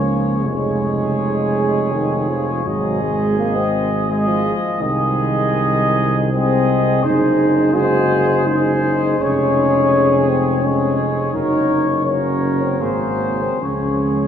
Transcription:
Already playing: tuba C#2, trombone F3, euphonium A#3, flugelhorn G#4, trumpet section C#5
0.45 tuba F1, trombone G#3, euphonium G#3, flugelhorn G#4, trumpet section C#5
1.93 euphonium D#3
2.29 euphonium F3
2.65 tuba G#1, euphonium F#3, trombone G#3, flugelhorn G#4, trumpet section D#5
3.01 euphonium G#3
3.38 euphonium A#3
3.55 euphonium C4
4.08 trombone G#3, euphonium G#3, flugelhorn G#4, trumpet section D#5
4.27 euphonium F3
4.80 tuba C2, euphonium D#3, trombone G#3, flugelhorn G#4, trumpet section D#5
6.32 trombone G#3, euphonium C4, flugelhorn G#4, trumpet section D#5
7.02 tuba F#1, trombone G#3, euphonium D#4, flugelhorn G#4, trumpet section C5
7.73 trombone G#3, euphonium F#4, flugelhorn G#4, trumpet section C5
8.46 trombone G#3, euphonium D#4, flugelhorn G#4, trumpet section C5
9.18 tuba F1, trombone G#3, euphonium C#4, flugelhorn G#4, trumpet section C#5
10.28 euphonium C4
10.62 trombone G#3, euphonium C#4, flugelhorn G#4, trumpet section C#5
11.32 tuba F#1, trombone F#3, euphonium D#4, flugelhorn A#4, trumpet section C#5
12.04 trombone F#3, euphonium C#4, flugelhorn A#4, trumpet section C#5
12.62 euphonium C4
12.80 tuba G#1, trombone F#3, euphonium A#3, flugelhorn G#4, trumpet section C5
13.42 euphonium C4
13.60 tuba C#2, trombone F3, euphonium C#4, flugelhorn G#4, trumpet section C#5

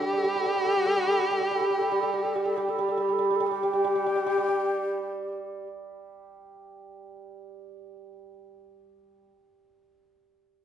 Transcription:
Already playing: guzheng G3 D4 G4, hammered dulcimer A3 C4, erhu G4
0.02 hammered dulcimer G3
0.06 xiao G4
0.13 hammered dulcimer G3
0.18 xiao A4
0.24 hammered dulcimer G3
0.29 xiao G4
0.36 hammered dulcimer G3, xiao A4
0.46 hammered dulcimer G3
0.52 xiao G4
0.57 hammered dulcimer G3
0.64 hammered dulcimer G3, xiao A4
0.75 hammered dulcimer G3, xiao G4
0.86 hammered dulcimer G3, xiao A4
0.97 hammered dulcimer G3, xiao G4
1.07 hammered dulcimer G3, xiao A4
1.19 hammered dulcimer G3, xiao G4
1.31 hammered dulcimer G3, xiao A4
1.40 hammered dulcimer G3, xiao G4
1.51 hammered dulcimer G3
1.55 xiao A4
1.61 hammered dulcimer G3
1.67 hammered dulcimer G3, xiao G4
1.79 hammered dulcimer G3, xiao A4
1.90 hammered dulcimer G3, xiao G4
2.01 hammered dulcimer G3, xiao A4
2.11 hammered dulcimer G3, xiao G4
2.23 hammered dulcimer G3, xiao A4
2.35 hammered dulcimer G3, xiao G4
2.45 hammered dulcimer G3, xiao A4
2.57 hammered dulcimer G3, xiao G4
2.68 hammered dulcimer G3, xiao A4
2.79 hammered dulcimer G3, xiao G4
2.88 hammered dulcimer G3, xiao A4
2.97 hammered dulcimer G3
3.02 xiao G4
3.09 hammered dulcimer G3
3.13 xiao A4
3.19 hammered dulcimer G3
3.25 xiao G4
3.31 hammered dulcimer G3
3.36 xiao A4
3.40 hammered dulcimer G3
3.47 xiao G4
3.51 hammered dulcimer G3
3.63 hammered dulcimer G3
3.73 hammered dulcimer G3
3.84 hammered dulcimer G3
3.95 hammered dulcimer G3
4.06 hammered dulcimer G3
4.15 hammered dulcimer G3
4.26 hammered dulcimer G3
4.38 hammered dulcimer G3
4.49 hammered dulcimer G3

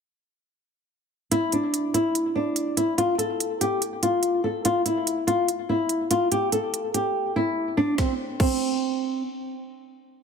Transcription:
1.31 nylon-string guitar E4, closed hi-hat
1.52 nylon-string guitar D4, closed hi-hat
1.74 closed hi-hat
1.94 nylon-string guitar E4, closed hi-hat
2.15 closed hi-hat
2.35 nylon-string guitar D4
2.56 closed hi-hat
2.77 nylon-string guitar E4, closed hi-hat
2.98 nylon-string guitar F4, closed hi-hat
3.18 nylon-string guitar A4, closed hi-hat
3.40 closed hi-hat
3.61 nylon-string guitar G4, closed hi-hat
3.82 closed hi-hat
4.03 nylon-string guitar F4, closed hi-hat
4.23 closed hi-hat
4.44 nylon-string guitar A4
4.65 nylon-string guitar F4, closed hi-hat
4.86 nylon-string guitar E4, closed hi-hat
5.07 closed hi-hat
5.27 nylon-string guitar F4, closed hi-hat
5.48 closed hi-hat
5.69 nylon-string guitar E4
5.89 closed hi-hat
6.11 nylon-string guitar F4, closed hi-hat
6.32 nylon-string guitar G4, closed hi-hat
6.52 nylon-string guitar A4, closed hi-hat
6.74 closed hi-hat
6.94 nylon-string guitar G4, closed hi-hat
7.36 nylon-string guitar E4
7.77 nylon-string guitar D4
7.98 nylon-string guitar C4, kick, snare
8.40 nylon-string guitar C4, kick, crash

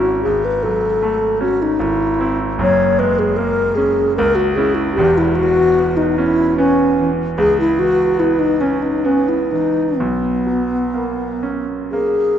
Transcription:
Already playing: grand piano G#1 C#4 E4, alto flute F#4
0.23 grand piano G#1, alto flute G#4
0.45 alto flute B4
0.63 grand piano F#3, alto flute A4
1.02 grand piano A3
1.41 grand piano C#4, alto flute F#4
1.62 alto flute D#4
1.80 grand piano G#1, alto flute E4
2.19 grand piano C4 E4
2.58 grand piano F#1 F#2, alto flute C#5
2.99 grand piano G#3, alto flute B4
3.19 alto flute G#4
3.37 grand piano A#3, alto flute A#4
3.76 grand piano C#4, alto flute G#4
4.17 grand piano C#2, alto flute A#4
4.35 alto flute F#4
4.55 grand piano C#4 E4, alto flute G#4
4.75 alto flute E4
4.94 grand piano E1, alto flute G4
4.99 grand piano E2
5.18 alto flute E4
5.36 grand piano E3, alto flute F#4
5.78 grand piano B3
5.97 alto flute D#4
6.18 grand piano C#4, alto flute E4
6.58 grand piano B3, alto flute C#4
7.00 grand piano E3
7.38 grand piano C#2, alto flute G#4
7.60 alto flute E4
7.78 grand piano E3, alto flute F#4
8.20 grand piano B3, alto flute E4
8.39 alto flute D#4
8.61 alto flute C#4, grand piano C#4
8.83 alto flute D#4
9.04 grand piano B3, alto flute C#4
9.29 alto flute E4
9.52 grand piano E3, alto flute D#4
9.99 grand piano B1, alto flute B3
10.47 grand piano F#3
10.94 grand piano A#3
11.43 grand piano C#4
11.91 grand piano A#3, alto flute G#4

